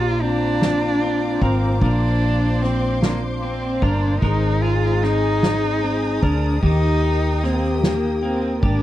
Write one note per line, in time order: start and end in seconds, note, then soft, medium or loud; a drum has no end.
0.00 1.37 A#1 loud
0.00 1.82 A#2 medium
0.00 0.21 A#3 medium
0.00 0.61 D4 medium
0.00 0.23 F4 loud
0.00 0.17 G4 loud
0.00 1.43 A#4 medium
0.00 6.58 C5 medium
0.00 4.18 F5 medium
0.00 1.78 A#5 medium
0.00 4.18 D6 medium
0.22 1.01 C4 medium
0.22 1.43 D4 loud
0.22 3.79 F4 loud
0.61 2.22 D4 medium
0.61 snare loud
0.61 ride medium
1.02 2.62 C4 medium
1.41 1.79 G#1 medium
1.41 1.81 C4 medium
1.41 1.83 A#4 medium
1.41 kick medium
1.81 3.78 A#1 loud
1.81 4.23 A#2 medium
1.81 2.64 D4 loud
1.81 3.82 A#4 medium
1.81 4.19 C6 medium
1.81 kick loud
2.23 3.02 D4 medium
2.62 3.02 C4 medium
2.62 3.42 C4 medium
2.62 snare soft
3.02 3.20 A#3 medium
3.02 4.31 D4 medium
3.02 snare loud
3.02 ride medium
3.42 3.84 C4 medium
3.42 5.03 C4 medium
3.82 4.20 G1 medium
3.82 4.21 D4 medium
3.82 4.23 A#4 medium
3.82 kick medium
3.82 ride soft
4.21 6.18 G#1 loud
4.21 6.63 G#3 medium
4.21 4.63 D#4 loud
4.21 6.58 G#4 loud
4.21 6.23 A#4 medium
4.21 6.60 G#5 medium
4.21 6.60 A#5 medium
4.21 8.83 D#6 medium
4.21 kick loud
4.21 ride medium
4.62 7.02 D#4 medium
4.62 5.05 F4 medium
5.02 5.82 C4 medium
5.02 6.25 D#4 loud
5.02 snare soft
5.02 ride soft
5.42 snare loud
5.42 ride medium
5.83 6.71 C4 medium
6.23 6.60 D2 medium
6.23 6.63 D4 medium
6.23 6.63 A#4 medium
6.23 kick loud
6.62 8.64 D#2 loud
6.62 8.83 D#3 medium
6.62 7.45 D#4 loud
6.62 7.39 G4 loud
6.62 8.62 G4 medium
6.62 8.83 A#4 medium
6.62 8.83 G5 medium
6.62 kick loud
7.03 7.83 D#4 medium
7.43 8.22 A#3 medium
7.43 7.83 C4 medium
7.43 8.72 G4 loud
7.43 snare soft
7.83 8.20 A#3 medium
7.83 snare loud
7.83 ride medium
8.22 8.83 A#3 medium
8.22 8.61 C4 medium
8.22 ride soft
8.63 8.83 G#1 medium
8.63 8.83 D4 medium
8.63 8.83 G4 medium
8.63 kick medium